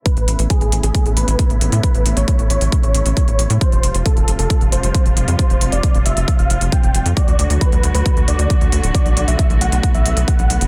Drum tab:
HH |xxxxxxxxxxxxxxxx|xxxxxxxxxxxxxxxx|xxxxxxxxxxxxxxxx|xxxxxxxxxxxxxxxx|
BD |o---o---o---o---|o---o---o---o---|o---o---o---o---|o---o---o---o---|

HH |xxxxxxxxxxxxxxxx|xxxxxxxxxxxxxxxx|
BD |o---o---o---o---|o---o---o---o---|